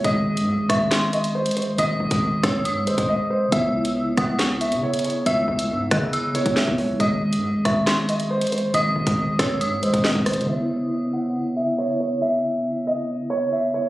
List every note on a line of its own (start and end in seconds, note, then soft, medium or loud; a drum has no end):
0.01 0.39 G#1 loud
0.01 2.81 G#3 medium
0.01 2.83 G#4 medium
0.01 0.66 D#5 loud
0.01 0.66 D#6 loud
0.01 kick loud
0.01 closed hi-hat medium
0.37 0.55 G#2 loud
0.37 closed hi-hat medium
0.53 0.69 G#1 loud
0.69 1.47 G#1 loud
0.69 1.10 E5 medium
0.69 0.90 C#6 medium
0.69 kick loud
0.69 cross-stick medium
0.69 closed hi-hat medium
0.91 1.32 C6 medium
0.91 snare loud
0.91 clap medium
0.91 closed hi-hat medium
1.13 1.34 D#5 medium
1.13 closed hi-hat medium
1.24 closed hi-hat medium
1.35 1.55 C5 medium
1.46 1.64 A1 loud
1.46 closed hi-hat medium
1.51 closed hi-hat medium
1.57 1.77 C5 medium
1.57 closed hi-hat medium
1.62 1.78 G#1 loud
1.62 closed hi-hat soft
1.78 1.99 G#1 loud
1.78 2.40 D#5 loud
1.78 2.40 D#6 loud
1.78 closed hi-hat medium
2.00 2.11 G#1 loud
2.11 2.42 G#1 loud
2.11 kick loud
2.11 closed hi-hat medium
2.43 2.67 G#1 loud
2.43 2.84 C#5 medium
2.43 2.64 E6 medium
2.43 kick loud
2.43 cross-stick loud
2.43 snare medium
2.43 closed hi-hat medium
2.65 2.83 G#2 loud
2.65 3.48 D#6 medium
2.65 closed hi-hat medium
2.82 2.97 G#1 loud
2.82 3.51 G#3 medium
2.86 3.52 G#4 soft
2.86 3.08 C5 medium
2.86 3.53 C5 soft
2.86 3.53 D#5 medium
2.86 closed hi-hat medium
2.98 3.08 G#1 loud
2.98 kick loud
2.98 closed hi-hat medium
3.09 3.29 D#5 medium
3.30 3.51 C5 medium
3.48 6.29 C#3 medium
3.48 6.30 B3 medium
3.52 4.15 C#2 loud
3.52 6.31 E4 medium
3.52 6.33 C#5 medium
3.52 4.14 E5 loud
3.52 4.14 E6 loud
3.52 kick loud
3.52 closed hi-hat medium
3.85 closed hi-hat medium
4.17 4.73 C#2 loud
4.17 4.59 F#5 medium
4.17 4.38 D#6 medium
4.17 kick loud
4.17 cross-stick medium
4.17 closed hi-hat loud
4.39 4.80 C#6 medium
4.39 snare loud
4.39 clap medium
4.39 closed hi-hat medium
4.61 4.81 E5 medium
4.61 closed hi-hat medium
4.72 5.23 C#3 loud
4.72 closed hi-hat medium
4.83 5.03 C#5 medium
4.94 closed hi-hat medium
4.99 closed hi-hat medium
5.04 5.25 C#5 medium
5.04 closed hi-hat medium
5.10 closed hi-hat soft
5.26 5.47 C#2 loud
5.26 5.88 E5 loud
5.26 5.88 E6 loud
5.26 closed hi-hat medium
5.48 5.71 C#2 loud
5.59 closed hi-hat medium
5.70 5.90 G#2 loud
5.91 6.44 C#3 loud
5.91 6.32 D#5 medium
5.91 6.12 F#6 medium
5.91 kick loud
5.91 cross-stick loud
5.91 closed hi-hat medium
6.13 6.54 E6 medium
6.13 closed hi-hat medium
6.33 6.99 C#3 medium
6.33 7.00 B3 soft
6.33 7.00 E4 medium
6.33 6.55 C#5 medium
6.33 7.01 C#5 medium
6.33 closed hi-hat medium
6.46 6.67 C#2 loud
6.46 kick loud
6.46 closed hi-hat medium
6.57 6.77 E5 medium
6.57 snare loud
6.57 clap medium
6.67 6.99 C#2 loud
6.67 kick loud
6.78 6.99 C#5 medium
6.78 open hi-hat medium
6.96 7.34 G#1 loud
6.96 9.77 G#3 medium
6.96 9.78 G#4 medium
6.96 7.61 D#5 loud
6.96 7.61 D#6 loud
6.96 kick loud
6.96 closed hi-hat medium
7.33 7.50 G#2 loud
7.33 closed hi-hat medium
7.49 7.64 G#1 loud
7.65 8.43 G#1 loud
7.65 8.06 E5 medium
7.65 7.86 C#6 medium
7.65 kick loud
7.65 cross-stick medium
7.65 closed hi-hat medium
7.86 8.28 C6 medium
7.86 snare loud
7.86 clap medium
7.86 closed hi-hat medium
8.09 8.29 D#5 medium
8.09 closed hi-hat medium
8.20 closed hi-hat medium
8.31 8.51 C5 medium
8.41 8.59 A1 loud
8.41 closed hi-hat medium
8.47 closed hi-hat medium
8.52 8.73 C5 medium
8.52 closed hi-hat medium
8.58 8.73 G#1 loud
8.58 closed hi-hat soft
8.74 8.95 G#1 loud
8.74 9.35 D#5 medium
8.74 9.36 D#6 loud
8.74 closed hi-hat medium
8.96 9.06 G#1 loud
9.07 9.38 G#1 loud
9.07 kick loud
9.07 closed hi-hat medium
9.39 9.62 G#1 loud
9.39 9.80 C#5 medium
9.39 9.60 E6 medium
9.39 kick loud
9.39 cross-stick loud
9.39 snare medium
9.39 closed hi-hat medium
9.61 9.79 G#2 loud
9.61 10.44 D#6 medium
9.61 closed hi-hat medium
9.77 9.93 G#1 loud
9.77 10.47 G#3 medium
9.82 10.48 G#4 soft
9.82 10.03 C5 medium
9.82 10.48 C5 soft
9.82 10.49 D#5 medium
9.82 closed hi-hat medium
9.94 10.14 G#1 loud
9.94 kick medium
9.94 closed hi-hat medium
10.04 10.25 D#5 medium
10.04 snare loud
10.04 clap medium
10.15 10.39 G#1 loud
10.15 kick loud
10.26 10.47 C5 medium
10.26 cross-stick loud
10.26 closed hi-hat medium
10.26 open hi-hat medium
10.33 10.47 D#3 loud
10.33 closed hi-hat medium
10.41 13.89 C#3 medium
10.41 closed hi-hat soft
10.46 13.89 B3 medium
10.46 13.89 E4 medium
10.46 11.09 E5 medium
10.52 13.89 C#5 medium
11.13 11.54 F#5 medium
11.56 11.77 E5 medium
11.78 11.99 C#5 medium
12.00 12.21 C#5 medium
12.22 12.83 E5 medium
12.87 13.28 D#5 medium
13.30 13.51 C#5 medium
13.52 13.73 E5 medium
13.74 13.89 C#5 medium